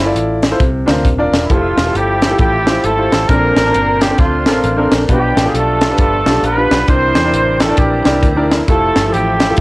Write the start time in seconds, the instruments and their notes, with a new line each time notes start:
Already playing: fingered electric bass G1, horn section E3 A3 C4 E4, trumpet E4
0.05 grand piano E4 F4 A4 D5
0.15 fingered electric bass A1, closed hi-hat
0.43 snare, closed hi-hat
0.51 grand piano E4 F4 A4 C5
0.60 fingered electric bass C2, grand piano C3, kick, closed hi-hat
0.86 fingered electric bass D2, grand piano D4 F4 A#4 C5, snare, closed hi-hat
1.05 fingered electric bass D#1, kick, closed hi-hat
1.18 grand piano D4 F4 A#4 D5
1.32 fingered electric bass E1, snare, closed hi-hat
1.44 trumpet E4
1.49 fingered electric bass F1, tonewheel organ F3 A3 G4 E5, horn section F3 A3 C4 F4, grand piano E4 F4 G4 A4, trumpet F4, kick, closed hi-hat
1.77 fingered electric bass E1, snare, closed hi-hat
1.85 grand piano E4 F4 G4 A4
1.95 fingered electric bass G1, horn section G3 C4 E4 G4, trumpet G4, closed hi-hat
2.22 snare, closed hi-hat
2.30 grand piano E4 F4 G4 A4
2.38 fingered electric bass A1, horn section G3 C4 E4 G4, trumpet G4, kick, closed hi-hat
2.66 grand piano E4 F4 G4 C5, snare, closed hi-hat
2.84 fingered electric bass G#1, horn section A3 C4 E4 A4, trumpet A4, closed hi-hat
2.98 grand piano E4 F4 G4 C5
3.12 fingered electric bass A1, snare, closed hi-hat
3.28 fingered electric bass A#1, grand piano A#2 C4 D4 A4 A#4, tonewheel organ D3 C4 D4 G4, horn section A#3 D4 F4 A#4, trumpet A#4, kick, closed hi-hat
3.34 tonewheel organ C5
3.57 fingered electric bass A1, snare, closed hi-hat
3.65 grand piano C4 D4 A#4 A5
3.74 fingered electric bass G1, closed hi-hat
4.01 horn section G3 G4, trumpet G4, snare, closed hi-hat
4.10 grand piano C4 D4 A4 C5
4.18 fingered electric bass D2, horn section F3 A3 D4 F4, trumpet F4, kick, closed hi-hat
4.46 fingered electric bass A1, grand piano C4 D4 A4 A#4, snare, closed hi-hat
4.64 fingered electric bass A1, closed hi-hat
4.77 grand piano C4 D4 A4 A#4
4.92 fingered electric bass A#1, snare, closed hi-hat
5.08 fingered electric bass B1, grand piano B2 D4 F4 G4 B4, tonewheel organ F3 B3 D4 G4, horn section G3 D4 G4, trumpet G4, kick, closed hi-hat
5.36 fingered electric bass A1, snare, closed hi-hat
5.44 grand piano D4 F4 G4 A4
5.49 trumpet G#4
5.54 fingered electric bass B1, horn section A3 D4 F4 A4, trumpet A4, closed hi-hat
5.81 snare, closed hi-hat
5.89 grand piano D4 F4 G4 B4
5.98 fingered electric bass G1, horn section A3 D4 F4 A4, trumpet A4, kick, closed hi-hat
6.26 fingered electric bass B1, grand piano D4 F4 G4 D5, snare, closed hi-hat
6.42 fingered electric bass A#1, horn section B3 D4 F4 B4, trumpet B4, closed hi-hat
6.57 grand piano D4 F4 G4 B4
6.71 fingered electric bass B1, snare, closed hi-hat
6.87 fingered electric bass C2, grand piano C3 D4 E4 A#4 C5, tonewheel organ E3 C4 D4 A#4, horn section C4 E4 G4 C5, trumpet C5, kick, closed hi-hat
7.15 fingered electric bass E2, snare, closed hi-hat
7.24 grand piano D4 E4 A#4 D5
7.33 fingered electric bass A1, closed hi-hat
7.60 horn section A3 A4, trumpet A4, snare, closed hi-hat
7.69 grand piano D4 E4 A#4 D5
7.77 fingered electric bass A#1, horn section G3 A#3 E4 G4, trumpet G4, kick, closed hi-hat
8.04 fingered electric bass C2, grand piano D4 E4 A#4 D5, snare, closed hi-hat
8.23 fingered electric bass D2, kick, closed hi-hat
8.36 grand piano D4 E4 A#4 D5
8.51 snare, closed hi-hat
8.68 fingered electric bass F1, tonewheel organ F3 A3 E4 G4, horn section A3 C4 E4 A4, grand piano E4 F4 G4 A4, trumpet A4, kick, closed hi-hat
8.96 fingered electric bass G1, snare, closed hi-hat
9.04 grand piano F3 E4 G4 G#4
9.11 fingered electric bass A1, horn section G3 C4 E4 G4, trumpet G4, grand piano A4, closed hi-hat
9.40 snare, closed hi-hat
9.49 grand piano E4 F4 G4 A4
9.57 fingered electric bass C2, closed hi-hat